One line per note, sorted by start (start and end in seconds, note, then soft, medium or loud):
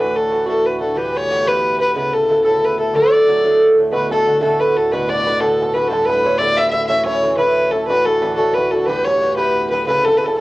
0.00 3.91 D2 medium
0.00 0.29 A2 medium
0.00 3.91 A2 medium
0.00 0.31 E3 medium
0.00 0.31 D4 medium
0.00 0.32 F#4 medium
0.00 0.18 B4 medium
0.16 0.47 A4 medium
0.30 0.47 A2 soft
0.30 0.46 E3 medium
0.30 0.45 D4 soft
0.30 0.45 F#4 medium
0.46 0.81 A2 soft
0.46 0.82 E3 soft
0.46 0.81 D4 medium
0.46 0.79 F#4 soft
0.46 0.67 A4 medium
0.66 0.80 B4 medium
0.80 0.95 E3 soft
0.80 0.97 D4 soft
0.80 0.96 F#4 soft
0.80 0.99 A4 medium
0.95 1.28 G2 medium
0.95 1.29 E3 medium
0.95 1.30 B3 medium
0.95 1.31 G4 medium
0.95 1.18 B4 medium
1.17 1.49 C#5 medium
1.29 1.45 G2 soft
1.29 1.45 E3 medium
1.29 1.44 B3 soft
1.29 1.44 G4 medium
1.45 1.80 G2 medium
1.45 1.80 E3 medium
1.45 1.79 B3 medium
1.45 1.77 G4 medium
1.45 1.80 B4 medium
1.78 1.96 E3 soft
1.78 1.95 B3 soft
1.78 1.95 G4 soft
1.78 1.95 B4 medium
1.95 2.28 C#3 medium
1.95 2.29 B3 medium
1.95 2.30 E4 medium
1.95 2.31 A4 medium
1.95 2.15 B4 medium
2.13 2.44 A4 medium
2.29 2.45 C#3 medium
2.29 2.45 B3 medium
2.29 2.45 E4 medium
2.29 2.43 A4 medium
2.45 2.80 C#3 soft
2.45 2.79 B3 medium
2.45 2.79 E4 soft
2.45 2.78 A4 medium
2.45 2.66 A4 medium
2.64 2.79 B4 medium
2.78 2.94 B3 soft
2.78 2.95 E4 soft
2.78 2.94 A4 soft
2.78 2.97 A4 medium
2.94 3.27 D3 medium
2.94 3.28 F#3 medium
2.94 3.28 A3 medium
2.94 3.29 A4 medium
2.94 3.62 D5 medium
3.27 3.43 D3 medium
3.27 3.43 F#3 medium
3.27 3.42 A3 medium
3.27 3.42 A4 medium
3.43 3.91 D3 medium
3.43 3.79 F#3 medium
3.43 3.77 A3 medium
3.43 3.76 A4 medium
3.77 3.92 F#3 soft
3.77 3.92 A3 soft
3.77 3.93 A4 soft
3.92 7.89 D2 medium
3.92 7.89 A2 medium
3.92 4.24 B2 medium
3.92 4.26 D3 medium
3.92 4.26 A3 medium
3.92 4.27 F#4 medium
3.92 4.09 B4 medium
3.92 4.10 B4 medium
4.11 4.40 A4 medium
4.11 4.41 A4 medium
4.26 4.41 B2 medium
4.26 4.40 D3 medium
4.26 4.40 A3 medium
4.26 4.39 F#4 medium
4.41 4.76 B2 medium
4.41 4.77 D3 medium
4.41 4.75 A3 medium
4.41 4.74 F#4 medium
4.41 4.59 A4 medium
4.41 4.61 A4 medium
4.60 4.78 B4 medium
4.60 4.90 B4 medium
4.75 4.91 D3 soft
4.75 4.92 A3 soft
4.75 4.91 F#4 soft
4.75 4.93 A4 medium
4.91 5.24 B2 medium
4.91 5.25 D3 medium
4.91 5.26 B3 medium
4.91 5.27 F#4 medium
4.91 5.11 B4 medium
4.91 5.09 B4 medium
5.09 5.26 D5 medium
5.09 5.42 D5 medium
5.25 5.40 B2 medium
5.25 5.40 D3 medium
5.25 5.39 B3 medium
5.25 5.38 F#4 medium
5.25 5.42 B4 medium
5.40 5.75 B2 medium
5.40 5.75 D3 medium
5.40 5.75 B3 medium
5.40 5.73 F#4 medium
5.40 5.75 A4 medium
5.44 5.61 A4 medium
5.62 5.77 A4 medium
5.74 5.89 D3 soft
5.74 5.90 B3 soft
5.74 5.90 F#4 soft
5.74 5.90 B4 medium
5.74 5.92 B4 medium
5.88 6.22 G2 medium
5.88 6.23 D3 medium
5.88 6.24 B3 medium
5.88 6.25 E4 medium
5.88 6.07 A4 medium
5.93 6.09 A4 medium
6.05 6.39 B4 medium
6.09 6.25 B4 medium
6.23 6.40 G2 medium
6.23 6.39 D3 medium
6.23 6.39 B3 medium
6.23 6.38 E4 medium
6.23 6.40 C#5 medium
6.38 6.75 G2 medium
6.38 6.74 D3 medium
6.38 6.74 B3 medium
6.38 6.73 E4 medium
6.38 6.58 D5 medium
6.38 6.57 D5 medium
6.57 6.70 E5 medium
6.57 6.72 E5 medium
6.70 6.90 E4 soft
6.70 6.86 E5 medium
6.70 6.88 E5 medium
6.75 6.89 D3 soft
6.75 6.90 B3 soft
6.87 7.21 A2 medium
6.87 7.23 E3 medium
6.87 7.24 C#4 medium
6.87 7.25 E4 medium
6.87 7.05 E5 medium
6.87 7.06 E5 medium
7.06 7.36 C#5 medium
7.22 7.39 A2 medium
7.22 7.38 E3 medium
7.22 7.38 C#4 medium
7.22 7.37 E4 medium
7.38 7.74 A2 soft
7.38 7.74 E3 soft
7.38 7.72 C#4 medium
7.38 7.71 E4 medium
7.38 7.73 B4 medium
7.38 7.72 B4 medium
7.71 7.88 E3 soft
7.71 7.89 C#4 soft
7.71 7.88 E4 soft
7.71 7.87 A4 medium
7.71 7.89 A4 medium
7.87 10.40 D2 medium
7.87 8.21 A2 medium
7.87 10.40 A2 medium
7.87 8.23 E3 medium
7.87 8.23 D4 medium
7.87 8.23 F#4 medium
7.87 8.07 B4 medium
7.87 8.06 B4 medium
8.06 8.35 A4 medium
8.06 8.21 A4 medium
8.22 8.38 A2 medium
8.22 8.38 E3 medium
8.22 8.37 D4 medium
8.22 8.36 F#4 medium
8.22 8.37 B4 medium
8.36 8.73 A2 medium
8.36 8.74 E3 medium
8.36 8.72 D4 medium
8.36 8.70 F#4 medium
8.36 8.55 A4 medium
8.36 8.53 A4 medium
8.53 8.72 B4 medium
8.53 8.57 C#5 soft
8.58 8.72 B4 medium
8.70 8.87 E3 soft
8.70 8.88 D4 soft
8.70 8.88 F#4 soft
8.70 8.88 A4 medium
8.86 9.19 G2 medium
8.86 9.20 E3 medium
8.86 9.21 B3 medium
8.86 9.22 G4 medium
8.86 9.06 B4 medium
9.05 9.36 C#5 medium
9.05 9.38 C#5 medium
9.21 9.37 G2 medium
9.21 9.37 E3 medium
9.21 9.36 B3 medium
9.21 9.35 G4 medium
9.37 9.72 G2 medium
9.37 9.72 E3 soft
9.37 9.71 B3 medium
9.37 9.69 G4 medium
9.37 9.69 B4 medium
9.37 9.70 B4 medium
9.70 9.87 E3 soft
9.70 9.86 B3 soft
9.70 9.87 G4 soft
9.70 9.86 B4 medium
9.70 9.89 B4 medium
9.86 10.20 C#3 medium
9.86 10.21 B3 medium
9.86 10.22 E4 medium
9.86 10.23 A4 medium
9.86 10.06 B4 medium
9.86 10.08 B4 medium
10.05 10.19 A4 medium
10.05 10.17 A4 medium
10.18 10.37 C#3 soft
10.18 10.28 B4 medium
10.22 10.38 B3 medium
10.22 10.37 E4 medium
10.22 10.36 A4 medium
10.22 10.37 A4 medium
10.28 10.37 A4 medium